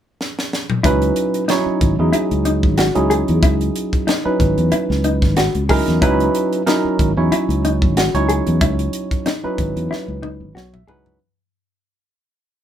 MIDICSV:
0, 0, Header, 1, 6, 480
1, 0, Start_track
1, 0, Key_signature, 4, "minor"
1, 0, Tempo, 647948
1, 622, Time_signature, 4, 2, 24, 8
1, 9357, End_track
2, 0, Start_track
2, 0, Title_t, "Clean electric guitar"
2, 0, Program_c, 0, 27
2, 618, Note_on_c, 0, 64, 77
2, 792, Note_off_c, 0, 64, 0
2, 1098, Note_on_c, 0, 63, 71
2, 1272, Note_off_c, 0, 63, 0
2, 1575, Note_on_c, 0, 64, 79
2, 1750, Note_off_c, 0, 64, 0
2, 1817, Note_on_c, 0, 63, 72
2, 1992, Note_off_c, 0, 63, 0
2, 2058, Note_on_c, 0, 66, 75
2, 2232, Note_off_c, 0, 66, 0
2, 2297, Note_on_c, 0, 68, 74
2, 2472, Note_off_c, 0, 68, 0
2, 2538, Note_on_c, 0, 64, 84
2, 2712, Note_off_c, 0, 64, 0
2, 3016, Note_on_c, 0, 63, 72
2, 3191, Note_off_c, 0, 63, 0
2, 3495, Note_on_c, 0, 64, 78
2, 3670, Note_off_c, 0, 64, 0
2, 3737, Note_on_c, 0, 63, 75
2, 3911, Note_off_c, 0, 63, 0
2, 3977, Note_on_c, 0, 66, 76
2, 4151, Note_off_c, 0, 66, 0
2, 4217, Note_on_c, 0, 68, 78
2, 4391, Note_off_c, 0, 68, 0
2, 4458, Note_on_c, 0, 64, 85
2, 4631, Note_off_c, 0, 64, 0
2, 4942, Note_on_c, 0, 63, 69
2, 5114, Note_off_c, 0, 63, 0
2, 5422, Note_on_c, 0, 64, 75
2, 5594, Note_off_c, 0, 64, 0
2, 5665, Note_on_c, 0, 63, 74
2, 5836, Note_off_c, 0, 63, 0
2, 5906, Note_on_c, 0, 66, 76
2, 6076, Note_off_c, 0, 66, 0
2, 6138, Note_on_c, 0, 68, 75
2, 6311, Note_off_c, 0, 68, 0
2, 6380, Note_on_c, 0, 64, 84
2, 6552, Note_off_c, 0, 64, 0
2, 6859, Note_on_c, 0, 63, 78
2, 7032, Note_off_c, 0, 63, 0
2, 7340, Note_on_c, 0, 64, 79
2, 7512, Note_off_c, 0, 64, 0
2, 7575, Note_on_c, 0, 63, 70
2, 7750, Note_off_c, 0, 63, 0
2, 7815, Note_on_c, 0, 66, 75
2, 7990, Note_off_c, 0, 66, 0
2, 8056, Note_on_c, 0, 68, 77
2, 8231, Note_off_c, 0, 68, 0
2, 9357, End_track
3, 0, Start_track
3, 0, Title_t, "Tine electric piano"
3, 0, Program_c, 1, 4
3, 630, Note_on_c, 1, 61, 76
3, 631, Note_on_c, 1, 54, 82
3, 632, Note_on_c, 1, 63, 70
3, 632, Note_on_c, 1, 64, 70
3, 632, Note_on_c, 1, 71, 87
3, 1064, Note_off_c, 1, 61, 0
3, 1065, Note_off_c, 1, 54, 0
3, 1065, Note_off_c, 1, 63, 0
3, 1065, Note_off_c, 1, 64, 0
3, 1065, Note_off_c, 1, 71, 0
3, 1111, Note_on_c, 1, 63, 77
3, 1112, Note_on_c, 1, 61, 70
3, 1113, Note_on_c, 1, 54, 81
3, 1114, Note_on_c, 1, 73, 89
3, 1116, Note_on_c, 1, 64, 76
3, 1440, Note_off_c, 1, 61, 0
3, 1440, Note_off_c, 1, 63, 0
3, 1441, Note_off_c, 1, 54, 0
3, 1442, Note_off_c, 1, 64, 0
3, 1442, Note_off_c, 1, 73, 0
3, 1475, Note_on_c, 1, 63, 65
3, 1478, Note_on_c, 1, 54, 75
3, 1479, Note_on_c, 1, 61, 66
3, 1479, Note_on_c, 1, 68, 75
3, 1480, Note_on_c, 1, 64, 65
3, 2118, Note_off_c, 1, 63, 0
3, 2119, Note_off_c, 1, 54, 0
3, 2120, Note_off_c, 1, 61, 0
3, 2120, Note_off_c, 1, 64, 0
3, 2120, Note_off_c, 1, 68, 0
3, 2187, Note_on_c, 1, 54, 79
3, 2187, Note_on_c, 1, 61, 70
3, 2189, Note_on_c, 1, 63, 73
3, 2189, Note_on_c, 1, 68, 85
3, 2190, Note_on_c, 1, 64, 71
3, 3048, Note_off_c, 1, 54, 0
3, 3048, Note_off_c, 1, 61, 0
3, 3049, Note_off_c, 1, 63, 0
3, 3049, Note_off_c, 1, 64, 0
3, 3049, Note_off_c, 1, 68, 0
3, 3148, Note_on_c, 1, 64, 62
3, 3150, Note_on_c, 1, 54, 67
3, 3150, Note_on_c, 1, 61, 65
3, 3151, Note_on_c, 1, 63, 64
3, 3152, Note_on_c, 1, 71, 76
3, 4007, Note_off_c, 1, 64, 0
3, 4008, Note_off_c, 1, 54, 0
3, 4008, Note_off_c, 1, 61, 0
3, 4009, Note_off_c, 1, 63, 0
3, 4009, Note_off_c, 1, 71, 0
3, 4222, Note_on_c, 1, 63, 83
3, 4223, Note_on_c, 1, 61, 74
3, 4224, Note_on_c, 1, 54, 82
3, 4224, Note_on_c, 1, 64, 78
3, 4224, Note_on_c, 1, 70, 97
3, 4440, Note_off_c, 1, 61, 0
3, 4440, Note_off_c, 1, 63, 0
3, 4441, Note_off_c, 1, 54, 0
3, 4441, Note_off_c, 1, 64, 0
3, 4441, Note_off_c, 1, 70, 0
3, 4462, Note_on_c, 1, 63, 77
3, 4463, Note_on_c, 1, 64, 81
3, 4464, Note_on_c, 1, 54, 85
3, 4464, Note_on_c, 1, 71, 95
3, 4465, Note_on_c, 1, 61, 75
3, 4898, Note_off_c, 1, 63, 0
3, 4899, Note_off_c, 1, 54, 0
3, 4899, Note_off_c, 1, 64, 0
3, 4899, Note_off_c, 1, 71, 0
3, 4900, Note_off_c, 1, 61, 0
3, 4934, Note_on_c, 1, 54, 81
3, 4936, Note_on_c, 1, 61, 71
3, 4937, Note_on_c, 1, 70, 90
3, 4938, Note_on_c, 1, 63, 75
3, 4938, Note_on_c, 1, 64, 78
3, 5270, Note_off_c, 1, 54, 0
3, 5271, Note_off_c, 1, 61, 0
3, 5271, Note_off_c, 1, 63, 0
3, 5271, Note_off_c, 1, 70, 0
3, 5272, Note_off_c, 1, 64, 0
3, 5311, Note_on_c, 1, 54, 70
3, 5312, Note_on_c, 1, 63, 65
3, 5313, Note_on_c, 1, 61, 72
3, 5314, Note_on_c, 1, 64, 75
3, 5315, Note_on_c, 1, 73, 79
3, 5954, Note_off_c, 1, 54, 0
3, 5954, Note_off_c, 1, 61, 0
3, 5954, Note_off_c, 1, 63, 0
3, 5955, Note_off_c, 1, 64, 0
3, 5956, Note_off_c, 1, 73, 0
3, 6035, Note_on_c, 1, 64, 69
3, 6036, Note_on_c, 1, 61, 72
3, 6036, Note_on_c, 1, 73, 94
3, 6037, Note_on_c, 1, 54, 75
3, 6038, Note_on_c, 1, 63, 69
3, 6890, Note_off_c, 1, 64, 0
3, 6891, Note_off_c, 1, 54, 0
3, 6891, Note_off_c, 1, 61, 0
3, 6891, Note_off_c, 1, 63, 0
3, 6891, Note_off_c, 1, 73, 0
3, 6990, Note_on_c, 1, 61, 64
3, 6991, Note_on_c, 1, 54, 74
3, 6994, Note_on_c, 1, 63, 66
3, 6996, Note_on_c, 1, 64, 63
3, 6996, Note_on_c, 1, 71, 77
3, 7829, Note_on_c, 1, 73, 67
3, 7849, Note_off_c, 1, 54, 0
3, 7849, Note_off_c, 1, 61, 0
3, 7851, Note_off_c, 1, 63, 0
3, 7851, Note_off_c, 1, 71, 0
3, 7852, Note_off_c, 1, 64, 0
3, 7947, Note_off_c, 1, 73, 0
3, 7951, Note_on_c, 1, 76, 60
3, 8052, Note_off_c, 1, 76, 0
3, 8063, Note_on_c, 1, 61, 80
3, 8065, Note_on_c, 1, 78, 57
3, 8066, Note_on_c, 1, 63, 77
3, 8066, Note_on_c, 1, 64, 72
3, 8066, Note_on_c, 1, 71, 92
3, 8067, Note_on_c, 1, 54, 82
3, 8281, Note_off_c, 1, 61, 0
3, 8282, Note_off_c, 1, 63, 0
3, 8282, Note_off_c, 1, 64, 0
3, 8282, Note_off_c, 1, 71, 0
3, 8283, Note_off_c, 1, 54, 0
3, 8287, Note_off_c, 1, 78, 0
3, 9357, End_track
4, 0, Start_track
4, 0, Title_t, "Fingered electric bass"
4, 0, Program_c, 2, 33
4, 626, Note_on_c, 2, 37, 95
4, 814, Note_off_c, 2, 37, 0
4, 1346, Note_on_c, 2, 32, 82
4, 1448, Note_off_c, 2, 32, 0
4, 1472, Note_on_c, 2, 40, 78
4, 1558, Note_off_c, 2, 40, 0
4, 1714, Note_on_c, 2, 37, 78
4, 1953, Note_on_c, 2, 32, 72
4, 1964, Note_off_c, 2, 37, 0
4, 2143, Note_off_c, 2, 32, 0
4, 2194, Note_on_c, 2, 37, 80
4, 2383, Note_off_c, 2, 37, 0
4, 2437, Note_on_c, 2, 40, 91
4, 2522, Note_off_c, 2, 40, 0
4, 2537, Note_on_c, 2, 37, 98
4, 2729, Note_off_c, 2, 37, 0
4, 3262, Note_on_c, 2, 32, 89
4, 3366, Note_off_c, 2, 32, 0
4, 3391, Note_on_c, 2, 40, 82
4, 3477, Note_off_c, 2, 40, 0
4, 3629, Note_on_c, 2, 37, 86
4, 3867, Note_on_c, 2, 32, 79
4, 3879, Note_off_c, 2, 37, 0
4, 4059, Note_off_c, 2, 32, 0
4, 4112, Note_on_c, 2, 37, 78
4, 4302, Note_off_c, 2, 37, 0
4, 4355, Note_on_c, 2, 40, 84
4, 4439, Note_off_c, 2, 40, 0
4, 4460, Note_on_c, 2, 37, 90
4, 4650, Note_off_c, 2, 37, 0
4, 5180, Note_on_c, 2, 32, 88
4, 5284, Note_off_c, 2, 32, 0
4, 5309, Note_on_c, 2, 40, 87
4, 5395, Note_off_c, 2, 40, 0
4, 5547, Note_on_c, 2, 37, 83
4, 5794, Note_on_c, 2, 32, 76
4, 5805, Note_off_c, 2, 37, 0
4, 5982, Note_off_c, 2, 32, 0
4, 6033, Note_on_c, 2, 37, 76
4, 6221, Note_off_c, 2, 37, 0
4, 6277, Note_on_c, 2, 40, 89
4, 6360, Note_off_c, 2, 40, 0
4, 6383, Note_on_c, 2, 37, 100
4, 6571, Note_off_c, 2, 37, 0
4, 7101, Note_on_c, 2, 32, 84
4, 7204, Note_off_c, 2, 32, 0
4, 7231, Note_on_c, 2, 40, 81
4, 7317, Note_off_c, 2, 40, 0
4, 7469, Note_on_c, 2, 37, 78
4, 7707, Note_on_c, 2, 32, 73
4, 7718, Note_off_c, 2, 37, 0
4, 7795, Note_off_c, 2, 32, 0
4, 7820, Note_on_c, 2, 35, 79
4, 8036, Note_off_c, 2, 35, 0
4, 9357, End_track
5, 0, Start_track
5, 0, Title_t, "Muted fingered electric bass strokes"
5, 1229, Note_on_c, 9, 29, 30
5, 1303, Note_off_c, 9, 29, 0
5, 1582, Note_on_c, 9, 29, 36
5, 1656, Note_off_c, 9, 29, 0
5, 3152, Note_on_c, 9, 29, 32
5, 3226, Note_off_c, 9, 29, 0
5, 3501, Note_on_c, 9, 29, 36
5, 3575, Note_off_c, 9, 29, 0
5, 5073, Note_on_c, 9, 29, 33
5, 5147, Note_off_c, 9, 29, 0
5, 5422, Note_on_c, 9, 29, 40
5, 5496, Note_off_c, 9, 29, 0
5, 6998, Note_on_c, 9, 29, 31
5, 7072, Note_off_c, 9, 29, 0
5, 7337, Note_on_c, 9, 29, 39
5, 7411, Note_off_c, 9, 29, 0
5, 9357, End_track
6, 0, Start_track
6, 0, Title_t, "Drums"
6, 154, Note_on_c, 9, 38, 65
6, 228, Note_off_c, 9, 38, 0
6, 286, Note_on_c, 9, 38, 74
6, 360, Note_off_c, 9, 38, 0
6, 395, Note_on_c, 9, 38, 78
6, 469, Note_off_c, 9, 38, 0
6, 516, Note_on_c, 9, 45, 81
6, 590, Note_off_c, 9, 45, 0
6, 624, Note_on_c, 9, 36, 109
6, 624, Note_on_c, 9, 42, 74
6, 698, Note_off_c, 9, 36, 0
6, 698, Note_off_c, 9, 42, 0
6, 754, Note_on_c, 9, 42, 37
6, 828, Note_off_c, 9, 42, 0
6, 859, Note_on_c, 9, 42, 59
6, 933, Note_off_c, 9, 42, 0
6, 994, Note_on_c, 9, 42, 39
6, 1068, Note_off_c, 9, 42, 0
6, 1101, Note_on_c, 9, 42, 80
6, 1110, Note_on_c, 9, 38, 97
6, 1176, Note_off_c, 9, 42, 0
6, 1184, Note_off_c, 9, 38, 0
6, 1342, Note_on_c, 9, 36, 79
6, 1342, Note_on_c, 9, 42, 59
6, 1416, Note_off_c, 9, 36, 0
6, 1416, Note_off_c, 9, 42, 0
6, 1580, Note_on_c, 9, 42, 79
6, 1654, Note_off_c, 9, 42, 0
6, 1714, Note_on_c, 9, 42, 37
6, 1788, Note_off_c, 9, 42, 0
6, 1817, Note_on_c, 9, 42, 58
6, 1891, Note_off_c, 9, 42, 0
6, 1950, Note_on_c, 9, 36, 70
6, 2024, Note_off_c, 9, 36, 0
6, 2056, Note_on_c, 9, 42, 80
6, 2065, Note_on_c, 9, 38, 106
6, 2130, Note_off_c, 9, 42, 0
6, 2139, Note_off_c, 9, 38, 0
6, 2188, Note_on_c, 9, 42, 37
6, 2262, Note_off_c, 9, 42, 0
6, 2302, Note_on_c, 9, 42, 58
6, 2376, Note_off_c, 9, 42, 0
6, 2431, Note_on_c, 9, 42, 37
6, 2505, Note_off_c, 9, 42, 0
6, 2538, Note_on_c, 9, 36, 105
6, 2538, Note_on_c, 9, 42, 74
6, 2612, Note_off_c, 9, 36, 0
6, 2612, Note_off_c, 9, 42, 0
6, 2673, Note_on_c, 9, 42, 35
6, 2747, Note_off_c, 9, 42, 0
6, 2782, Note_on_c, 9, 42, 58
6, 2856, Note_off_c, 9, 42, 0
6, 2911, Note_on_c, 9, 36, 70
6, 2912, Note_on_c, 9, 42, 36
6, 2985, Note_off_c, 9, 36, 0
6, 2986, Note_off_c, 9, 42, 0
6, 3021, Note_on_c, 9, 42, 73
6, 3030, Note_on_c, 9, 38, 106
6, 3095, Note_off_c, 9, 42, 0
6, 3104, Note_off_c, 9, 38, 0
6, 3259, Note_on_c, 9, 36, 78
6, 3261, Note_on_c, 9, 42, 57
6, 3333, Note_off_c, 9, 36, 0
6, 3335, Note_off_c, 9, 42, 0
6, 3390, Note_on_c, 9, 42, 33
6, 3465, Note_off_c, 9, 42, 0
6, 3495, Note_on_c, 9, 42, 75
6, 3569, Note_off_c, 9, 42, 0
6, 3638, Note_on_c, 9, 38, 31
6, 3712, Note_off_c, 9, 38, 0
6, 3734, Note_on_c, 9, 42, 55
6, 3809, Note_off_c, 9, 42, 0
6, 3868, Note_on_c, 9, 36, 80
6, 3868, Note_on_c, 9, 42, 32
6, 3877, Note_on_c, 9, 38, 32
6, 3942, Note_off_c, 9, 36, 0
6, 3942, Note_off_c, 9, 42, 0
6, 3951, Note_off_c, 9, 38, 0
6, 3975, Note_on_c, 9, 42, 76
6, 3984, Note_on_c, 9, 38, 98
6, 4049, Note_off_c, 9, 42, 0
6, 4058, Note_off_c, 9, 38, 0
6, 4110, Note_on_c, 9, 42, 32
6, 4184, Note_off_c, 9, 42, 0
6, 4218, Note_on_c, 9, 36, 79
6, 4218, Note_on_c, 9, 46, 77
6, 4292, Note_off_c, 9, 36, 0
6, 4292, Note_off_c, 9, 46, 0
6, 4352, Note_on_c, 9, 42, 34
6, 4361, Note_on_c, 9, 38, 32
6, 4427, Note_off_c, 9, 42, 0
6, 4435, Note_off_c, 9, 38, 0
6, 4459, Note_on_c, 9, 36, 104
6, 4460, Note_on_c, 9, 42, 72
6, 4533, Note_off_c, 9, 36, 0
6, 4535, Note_off_c, 9, 42, 0
6, 4596, Note_on_c, 9, 42, 35
6, 4670, Note_off_c, 9, 42, 0
6, 4701, Note_on_c, 9, 42, 59
6, 4775, Note_off_c, 9, 42, 0
6, 4834, Note_on_c, 9, 42, 39
6, 4908, Note_off_c, 9, 42, 0
6, 4941, Note_on_c, 9, 42, 82
6, 4950, Note_on_c, 9, 38, 96
6, 5015, Note_off_c, 9, 42, 0
6, 5024, Note_off_c, 9, 38, 0
6, 5180, Note_on_c, 9, 36, 78
6, 5183, Note_on_c, 9, 42, 59
6, 5254, Note_off_c, 9, 36, 0
6, 5257, Note_off_c, 9, 42, 0
6, 5423, Note_on_c, 9, 42, 85
6, 5497, Note_off_c, 9, 42, 0
6, 5558, Note_on_c, 9, 42, 38
6, 5632, Note_off_c, 9, 42, 0
6, 5665, Note_on_c, 9, 42, 54
6, 5739, Note_off_c, 9, 42, 0
6, 5793, Note_on_c, 9, 36, 78
6, 5867, Note_off_c, 9, 36, 0
6, 5904, Note_on_c, 9, 42, 80
6, 5913, Note_on_c, 9, 38, 105
6, 5978, Note_off_c, 9, 42, 0
6, 5987, Note_off_c, 9, 38, 0
6, 6035, Note_on_c, 9, 42, 38
6, 6109, Note_off_c, 9, 42, 0
6, 6144, Note_on_c, 9, 42, 64
6, 6218, Note_off_c, 9, 42, 0
6, 6272, Note_on_c, 9, 42, 37
6, 6346, Note_off_c, 9, 42, 0
6, 6379, Note_on_c, 9, 42, 83
6, 6380, Note_on_c, 9, 36, 110
6, 6453, Note_off_c, 9, 42, 0
6, 6454, Note_off_c, 9, 36, 0
6, 6512, Note_on_c, 9, 42, 40
6, 6586, Note_off_c, 9, 42, 0
6, 6616, Note_on_c, 9, 42, 66
6, 6690, Note_off_c, 9, 42, 0
6, 6751, Note_on_c, 9, 36, 75
6, 6751, Note_on_c, 9, 42, 41
6, 6825, Note_off_c, 9, 36, 0
6, 6825, Note_off_c, 9, 42, 0
6, 6858, Note_on_c, 9, 42, 77
6, 6867, Note_on_c, 9, 38, 97
6, 6933, Note_off_c, 9, 42, 0
6, 6941, Note_off_c, 9, 38, 0
6, 7099, Note_on_c, 9, 36, 73
6, 7099, Note_on_c, 9, 42, 56
6, 7173, Note_off_c, 9, 36, 0
6, 7173, Note_off_c, 9, 42, 0
6, 7236, Note_on_c, 9, 42, 36
6, 7310, Note_off_c, 9, 42, 0
6, 7354, Note_on_c, 9, 38, 61
6, 7428, Note_off_c, 9, 38, 0
6, 7579, Note_on_c, 9, 47, 70
6, 7653, Note_off_c, 9, 47, 0
6, 7829, Note_on_c, 9, 38, 74
6, 7903, Note_off_c, 9, 38, 0
6, 7954, Note_on_c, 9, 45, 74
6, 8028, Note_off_c, 9, 45, 0
6, 8063, Note_on_c, 9, 43, 95
6, 8137, Note_off_c, 9, 43, 0
6, 8193, Note_on_c, 9, 43, 81
6, 8268, Note_off_c, 9, 43, 0
6, 9357, End_track
0, 0, End_of_file